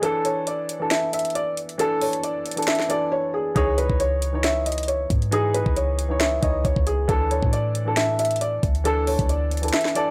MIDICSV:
0, 0, Header, 1, 5, 480
1, 0, Start_track
1, 0, Tempo, 441176
1, 33, Time_signature, 4, 2, 24, 8
1, 10995, End_track
2, 0, Start_track
2, 0, Title_t, "Felt piano"
2, 0, Program_c, 0, 0
2, 33, Note_on_c, 0, 69, 101
2, 258, Note_off_c, 0, 69, 0
2, 273, Note_on_c, 0, 73, 76
2, 498, Note_off_c, 0, 73, 0
2, 513, Note_on_c, 0, 74, 78
2, 964, Note_off_c, 0, 74, 0
2, 990, Note_on_c, 0, 76, 88
2, 1217, Note_off_c, 0, 76, 0
2, 1235, Note_on_c, 0, 76, 75
2, 1459, Note_off_c, 0, 76, 0
2, 1471, Note_on_c, 0, 74, 79
2, 1697, Note_off_c, 0, 74, 0
2, 1955, Note_on_c, 0, 69, 98
2, 2179, Note_off_c, 0, 69, 0
2, 2193, Note_on_c, 0, 73, 76
2, 2419, Note_off_c, 0, 73, 0
2, 2431, Note_on_c, 0, 74, 68
2, 2883, Note_off_c, 0, 74, 0
2, 2914, Note_on_c, 0, 76, 82
2, 3139, Note_off_c, 0, 76, 0
2, 3156, Note_on_c, 0, 74, 86
2, 3380, Note_off_c, 0, 74, 0
2, 3391, Note_on_c, 0, 73, 85
2, 3617, Note_off_c, 0, 73, 0
2, 3632, Note_on_c, 0, 68, 78
2, 3853, Note_off_c, 0, 68, 0
2, 3869, Note_on_c, 0, 68, 102
2, 4096, Note_off_c, 0, 68, 0
2, 4111, Note_on_c, 0, 71, 71
2, 4337, Note_off_c, 0, 71, 0
2, 4354, Note_on_c, 0, 73, 86
2, 4804, Note_off_c, 0, 73, 0
2, 4834, Note_on_c, 0, 76, 81
2, 5059, Note_off_c, 0, 76, 0
2, 5070, Note_on_c, 0, 75, 76
2, 5297, Note_off_c, 0, 75, 0
2, 5308, Note_on_c, 0, 73, 79
2, 5536, Note_off_c, 0, 73, 0
2, 5796, Note_on_c, 0, 68, 109
2, 6020, Note_off_c, 0, 68, 0
2, 6031, Note_on_c, 0, 71, 73
2, 6257, Note_off_c, 0, 71, 0
2, 6272, Note_on_c, 0, 73, 75
2, 6723, Note_off_c, 0, 73, 0
2, 6745, Note_on_c, 0, 76, 79
2, 6974, Note_off_c, 0, 76, 0
2, 6989, Note_on_c, 0, 75, 81
2, 7216, Note_off_c, 0, 75, 0
2, 7229, Note_on_c, 0, 73, 81
2, 7456, Note_off_c, 0, 73, 0
2, 7471, Note_on_c, 0, 68, 77
2, 7697, Note_off_c, 0, 68, 0
2, 7712, Note_on_c, 0, 69, 98
2, 7938, Note_off_c, 0, 69, 0
2, 7953, Note_on_c, 0, 73, 79
2, 8178, Note_off_c, 0, 73, 0
2, 8190, Note_on_c, 0, 74, 83
2, 8642, Note_off_c, 0, 74, 0
2, 8670, Note_on_c, 0, 76, 85
2, 8897, Note_off_c, 0, 76, 0
2, 8915, Note_on_c, 0, 76, 75
2, 9139, Note_off_c, 0, 76, 0
2, 9152, Note_on_c, 0, 74, 78
2, 9377, Note_off_c, 0, 74, 0
2, 9633, Note_on_c, 0, 69, 103
2, 9858, Note_off_c, 0, 69, 0
2, 9870, Note_on_c, 0, 73, 74
2, 10097, Note_off_c, 0, 73, 0
2, 10111, Note_on_c, 0, 74, 71
2, 10563, Note_off_c, 0, 74, 0
2, 10591, Note_on_c, 0, 76, 85
2, 10817, Note_off_c, 0, 76, 0
2, 10837, Note_on_c, 0, 74, 89
2, 10995, Note_off_c, 0, 74, 0
2, 10995, End_track
3, 0, Start_track
3, 0, Title_t, "Grand piano"
3, 0, Program_c, 1, 0
3, 0, Control_c, 1, 64, 127
3, 20, Note_on_c, 1, 52, 98
3, 33, Note_on_c, 1, 62, 92
3, 46, Control_c, 1, 64, 0
3, 46, Note_on_c, 1, 69, 109
3, 242, Control_c, 1, 64, 127
3, 816, Note_off_c, 1, 52, 0
3, 822, Note_off_c, 1, 62, 0
3, 829, Note_off_c, 1, 69, 0
3, 864, Note_on_c, 1, 52, 76
3, 877, Note_on_c, 1, 62, 65
3, 891, Note_on_c, 1, 69, 90
3, 1766, Note_off_c, 1, 52, 0
3, 1772, Note_off_c, 1, 62, 0
3, 1779, Note_off_c, 1, 69, 0
3, 1936, Note_on_c, 1, 52, 90
3, 1949, Note_on_c, 1, 62, 95
3, 1963, Note_on_c, 1, 69, 112
3, 2733, Note_off_c, 1, 52, 0
3, 2740, Note_off_c, 1, 62, 0
3, 2747, Note_off_c, 1, 69, 0
3, 2784, Note_on_c, 1, 52, 74
3, 2797, Note_on_c, 1, 62, 68
3, 2810, Note_on_c, 1, 69, 80
3, 3122, Note_off_c, 1, 52, 0
3, 3129, Note_off_c, 1, 62, 0
3, 3136, Note_off_c, 1, 69, 0
3, 3138, Note_on_c, 1, 52, 84
3, 3151, Note_on_c, 1, 62, 67
3, 3164, Note_on_c, 1, 69, 88
3, 3821, Note_off_c, 1, 52, 0
3, 3828, Note_off_c, 1, 62, 0
3, 3834, Note_off_c, 1, 69, 0
3, 3860, Note_on_c, 1, 52, 95
3, 3873, Note_on_c, 1, 63, 93
3, 3885, Control_c, 1, 64, 0
3, 3885, Note_on_c, 1, 73, 111
3, 4064, Control_c, 1, 64, 127
3, 4655, Note_off_c, 1, 52, 0
3, 4662, Note_off_c, 1, 63, 0
3, 4668, Note_off_c, 1, 73, 0
3, 4707, Note_on_c, 1, 52, 75
3, 4721, Note_on_c, 1, 63, 68
3, 4733, Note_on_c, 1, 73, 85
3, 5607, Note_off_c, 1, 52, 0
3, 5614, Note_off_c, 1, 63, 0
3, 5620, Note_off_c, 1, 73, 0
3, 5781, Note_on_c, 1, 52, 98
3, 5794, Note_on_c, 1, 63, 88
3, 5808, Note_on_c, 1, 68, 101
3, 6576, Note_off_c, 1, 52, 0
3, 6583, Note_off_c, 1, 63, 0
3, 6589, Note_off_c, 1, 68, 0
3, 6622, Note_on_c, 1, 52, 76
3, 6636, Note_on_c, 1, 63, 67
3, 6649, Note_on_c, 1, 73, 84
3, 6960, Note_off_c, 1, 52, 0
3, 6969, Note_off_c, 1, 63, 0
3, 6975, Note_off_c, 1, 73, 0
3, 6976, Note_on_c, 1, 52, 71
3, 6989, Note_on_c, 1, 63, 70
3, 7002, Note_on_c, 1, 73, 82
3, 7660, Note_off_c, 1, 52, 0
3, 7666, Note_off_c, 1, 63, 0
3, 7673, Note_off_c, 1, 73, 0
3, 7700, Note_on_c, 1, 52, 100
3, 7714, Note_on_c, 1, 62, 92
3, 7726, Note_on_c, 1, 69, 107
3, 7728, Control_c, 1, 64, 0
3, 7918, Control_c, 1, 64, 127
3, 8496, Note_off_c, 1, 52, 0
3, 8502, Note_off_c, 1, 62, 0
3, 8509, Note_off_c, 1, 69, 0
3, 8542, Note_on_c, 1, 52, 76
3, 8555, Note_on_c, 1, 62, 67
3, 8569, Note_on_c, 1, 69, 92
3, 9445, Note_off_c, 1, 52, 0
3, 9451, Note_off_c, 1, 62, 0
3, 9458, Note_off_c, 1, 69, 0
3, 9617, Note_on_c, 1, 52, 91
3, 9631, Note_on_c, 1, 62, 100
3, 9643, Note_on_c, 1, 69, 114
3, 10414, Note_off_c, 1, 52, 0
3, 10421, Note_off_c, 1, 62, 0
3, 10427, Note_off_c, 1, 69, 0
3, 10465, Note_on_c, 1, 52, 77
3, 10478, Note_on_c, 1, 62, 68
3, 10491, Note_on_c, 1, 69, 81
3, 10803, Note_off_c, 1, 52, 0
3, 10810, Note_off_c, 1, 62, 0
3, 10816, Note_off_c, 1, 69, 0
3, 10820, Note_on_c, 1, 52, 82
3, 10832, Note_on_c, 1, 62, 66
3, 10846, Note_on_c, 1, 69, 88
3, 10995, Note_off_c, 1, 52, 0
3, 10995, Note_off_c, 1, 62, 0
3, 10995, Note_off_c, 1, 69, 0
3, 10995, End_track
4, 0, Start_track
4, 0, Title_t, "808-style bass"
4, 0, Program_c, 2, 38
4, 3872, Note_on_c, 2, 37, 110
4, 4224, Note_off_c, 2, 37, 0
4, 4239, Note_on_c, 2, 37, 104
4, 5508, Note_off_c, 2, 37, 0
4, 5551, Note_on_c, 2, 44, 101
4, 6134, Note_off_c, 2, 44, 0
4, 6159, Note_on_c, 2, 37, 101
4, 6959, Note_off_c, 2, 37, 0
4, 6992, Note_on_c, 2, 37, 100
4, 7223, Note_off_c, 2, 37, 0
4, 7232, Note_on_c, 2, 37, 105
4, 7352, Note_off_c, 2, 37, 0
4, 7359, Note_on_c, 2, 37, 102
4, 7698, Note_off_c, 2, 37, 0
4, 7712, Note_on_c, 2, 38, 109
4, 8065, Note_off_c, 2, 38, 0
4, 8079, Note_on_c, 2, 45, 102
4, 9348, Note_off_c, 2, 45, 0
4, 9391, Note_on_c, 2, 38, 98
4, 9974, Note_off_c, 2, 38, 0
4, 9999, Note_on_c, 2, 38, 103
4, 10568, Note_off_c, 2, 38, 0
4, 10995, End_track
5, 0, Start_track
5, 0, Title_t, "Drums"
5, 30, Note_on_c, 9, 42, 85
5, 139, Note_off_c, 9, 42, 0
5, 271, Note_on_c, 9, 42, 75
5, 380, Note_off_c, 9, 42, 0
5, 510, Note_on_c, 9, 42, 77
5, 619, Note_off_c, 9, 42, 0
5, 752, Note_on_c, 9, 42, 83
5, 861, Note_off_c, 9, 42, 0
5, 990, Note_on_c, 9, 38, 123
5, 991, Note_on_c, 9, 42, 69
5, 1099, Note_off_c, 9, 38, 0
5, 1100, Note_off_c, 9, 42, 0
5, 1232, Note_on_c, 9, 42, 87
5, 1295, Note_off_c, 9, 42, 0
5, 1295, Note_on_c, 9, 42, 72
5, 1359, Note_off_c, 9, 42, 0
5, 1359, Note_on_c, 9, 42, 62
5, 1416, Note_off_c, 9, 42, 0
5, 1416, Note_on_c, 9, 42, 47
5, 1472, Note_off_c, 9, 42, 0
5, 1472, Note_on_c, 9, 42, 80
5, 1581, Note_off_c, 9, 42, 0
5, 1712, Note_on_c, 9, 42, 71
5, 1821, Note_off_c, 9, 42, 0
5, 1839, Note_on_c, 9, 42, 43
5, 1948, Note_off_c, 9, 42, 0
5, 1952, Note_on_c, 9, 42, 87
5, 2060, Note_off_c, 9, 42, 0
5, 2192, Note_on_c, 9, 42, 45
5, 2193, Note_on_c, 9, 46, 78
5, 2301, Note_off_c, 9, 42, 0
5, 2301, Note_off_c, 9, 46, 0
5, 2319, Note_on_c, 9, 42, 75
5, 2428, Note_off_c, 9, 42, 0
5, 2432, Note_on_c, 9, 42, 75
5, 2541, Note_off_c, 9, 42, 0
5, 2672, Note_on_c, 9, 42, 51
5, 2736, Note_off_c, 9, 42, 0
5, 2736, Note_on_c, 9, 42, 62
5, 2799, Note_off_c, 9, 42, 0
5, 2799, Note_on_c, 9, 42, 73
5, 2856, Note_off_c, 9, 42, 0
5, 2856, Note_on_c, 9, 42, 81
5, 2912, Note_on_c, 9, 38, 124
5, 2913, Note_off_c, 9, 42, 0
5, 2913, Note_on_c, 9, 42, 68
5, 2993, Note_off_c, 9, 42, 0
5, 2993, Note_on_c, 9, 42, 55
5, 3021, Note_off_c, 9, 38, 0
5, 3040, Note_on_c, 9, 38, 71
5, 3073, Note_off_c, 9, 42, 0
5, 3073, Note_on_c, 9, 42, 42
5, 3149, Note_off_c, 9, 38, 0
5, 3152, Note_off_c, 9, 42, 0
5, 3152, Note_on_c, 9, 42, 86
5, 3261, Note_off_c, 9, 42, 0
5, 3872, Note_on_c, 9, 36, 116
5, 3872, Note_on_c, 9, 42, 88
5, 3980, Note_off_c, 9, 42, 0
5, 3981, Note_off_c, 9, 36, 0
5, 4112, Note_on_c, 9, 42, 73
5, 4221, Note_off_c, 9, 42, 0
5, 4239, Note_on_c, 9, 36, 87
5, 4347, Note_off_c, 9, 36, 0
5, 4351, Note_on_c, 9, 42, 75
5, 4460, Note_off_c, 9, 42, 0
5, 4592, Note_on_c, 9, 42, 81
5, 4701, Note_off_c, 9, 42, 0
5, 4831, Note_on_c, 9, 38, 120
5, 4832, Note_on_c, 9, 42, 68
5, 4939, Note_off_c, 9, 38, 0
5, 4941, Note_off_c, 9, 42, 0
5, 5072, Note_on_c, 9, 42, 86
5, 5135, Note_off_c, 9, 42, 0
5, 5135, Note_on_c, 9, 42, 76
5, 5199, Note_off_c, 9, 42, 0
5, 5199, Note_on_c, 9, 42, 61
5, 5256, Note_off_c, 9, 42, 0
5, 5256, Note_on_c, 9, 42, 51
5, 5313, Note_off_c, 9, 42, 0
5, 5313, Note_on_c, 9, 42, 81
5, 5422, Note_off_c, 9, 42, 0
5, 5551, Note_on_c, 9, 36, 94
5, 5552, Note_on_c, 9, 42, 73
5, 5660, Note_off_c, 9, 36, 0
5, 5660, Note_off_c, 9, 42, 0
5, 5680, Note_on_c, 9, 42, 42
5, 5789, Note_off_c, 9, 42, 0
5, 5792, Note_on_c, 9, 42, 89
5, 5901, Note_off_c, 9, 42, 0
5, 6033, Note_on_c, 9, 42, 78
5, 6142, Note_off_c, 9, 42, 0
5, 6159, Note_on_c, 9, 36, 89
5, 6268, Note_off_c, 9, 36, 0
5, 6272, Note_on_c, 9, 42, 75
5, 6381, Note_off_c, 9, 42, 0
5, 6513, Note_on_c, 9, 42, 81
5, 6622, Note_off_c, 9, 42, 0
5, 6751, Note_on_c, 9, 38, 122
5, 6752, Note_on_c, 9, 42, 70
5, 6860, Note_off_c, 9, 38, 0
5, 6861, Note_off_c, 9, 42, 0
5, 6991, Note_on_c, 9, 42, 81
5, 6992, Note_on_c, 9, 36, 90
5, 7100, Note_off_c, 9, 42, 0
5, 7101, Note_off_c, 9, 36, 0
5, 7232, Note_on_c, 9, 36, 91
5, 7233, Note_on_c, 9, 42, 75
5, 7341, Note_off_c, 9, 36, 0
5, 7342, Note_off_c, 9, 42, 0
5, 7359, Note_on_c, 9, 36, 98
5, 7468, Note_off_c, 9, 36, 0
5, 7471, Note_on_c, 9, 42, 74
5, 7580, Note_off_c, 9, 42, 0
5, 7712, Note_on_c, 9, 36, 116
5, 7712, Note_on_c, 9, 42, 89
5, 7821, Note_off_c, 9, 36, 0
5, 7821, Note_off_c, 9, 42, 0
5, 7953, Note_on_c, 9, 42, 72
5, 8062, Note_off_c, 9, 42, 0
5, 8079, Note_on_c, 9, 36, 87
5, 8188, Note_off_c, 9, 36, 0
5, 8192, Note_on_c, 9, 42, 75
5, 8300, Note_off_c, 9, 42, 0
5, 8432, Note_on_c, 9, 42, 78
5, 8541, Note_off_c, 9, 42, 0
5, 8670, Note_on_c, 9, 38, 122
5, 8671, Note_on_c, 9, 42, 70
5, 8779, Note_off_c, 9, 38, 0
5, 8780, Note_off_c, 9, 42, 0
5, 8911, Note_on_c, 9, 42, 85
5, 8974, Note_off_c, 9, 42, 0
5, 8974, Note_on_c, 9, 42, 73
5, 9038, Note_off_c, 9, 42, 0
5, 9038, Note_on_c, 9, 42, 59
5, 9095, Note_off_c, 9, 42, 0
5, 9095, Note_on_c, 9, 42, 50
5, 9152, Note_off_c, 9, 42, 0
5, 9152, Note_on_c, 9, 42, 78
5, 9261, Note_off_c, 9, 42, 0
5, 9391, Note_on_c, 9, 36, 95
5, 9391, Note_on_c, 9, 42, 73
5, 9500, Note_off_c, 9, 36, 0
5, 9500, Note_off_c, 9, 42, 0
5, 9519, Note_on_c, 9, 42, 43
5, 9627, Note_off_c, 9, 42, 0
5, 9631, Note_on_c, 9, 42, 88
5, 9740, Note_off_c, 9, 42, 0
5, 9871, Note_on_c, 9, 42, 48
5, 9872, Note_on_c, 9, 46, 79
5, 9980, Note_off_c, 9, 42, 0
5, 9981, Note_off_c, 9, 46, 0
5, 9998, Note_on_c, 9, 36, 89
5, 9999, Note_on_c, 9, 42, 79
5, 10107, Note_off_c, 9, 36, 0
5, 10107, Note_off_c, 9, 42, 0
5, 10111, Note_on_c, 9, 42, 75
5, 10220, Note_off_c, 9, 42, 0
5, 10352, Note_on_c, 9, 42, 48
5, 10415, Note_off_c, 9, 42, 0
5, 10415, Note_on_c, 9, 42, 61
5, 10479, Note_off_c, 9, 42, 0
5, 10479, Note_on_c, 9, 42, 73
5, 10535, Note_off_c, 9, 42, 0
5, 10535, Note_on_c, 9, 42, 84
5, 10591, Note_on_c, 9, 38, 121
5, 10592, Note_off_c, 9, 42, 0
5, 10592, Note_on_c, 9, 42, 71
5, 10671, Note_off_c, 9, 42, 0
5, 10671, Note_on_c, 9, 42, 57
5, 10700, Note_off_c, 9, 38, 0
5, 10718, Note_on_c, 9, 38, 71
5, 10751, Note_off_c, 9, 42, 0
5, 10751, Note_on_c, 9, 42, 44
5, 10827, Note_off_c, 9, 38, 0
5, 10831, Note_off_c, 9, 42, 0
5, 10831, Note_on_c, 9, 42, 85
5, 10939, Note_off_c, 9, 42, 0
5, 10995, End_track
0, 0, End_of_file